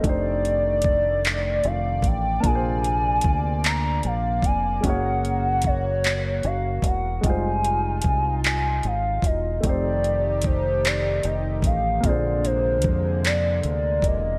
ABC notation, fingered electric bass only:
X:1
M:6/8
L:1/8
Q:3/8=50
K:Fdor
V:1 name="Fingered electric bass" clef=bass
F,,,4 F,,, =A,,, | B,,,2 D,,2 B,,, F,,, | _G,,,4 G,,, =E,,, | F,,,2 C,,2 A,,, =E,,, |
F,,,4 F,,, =A,,, | B,,,2 F,,2 D,, =E,,, |]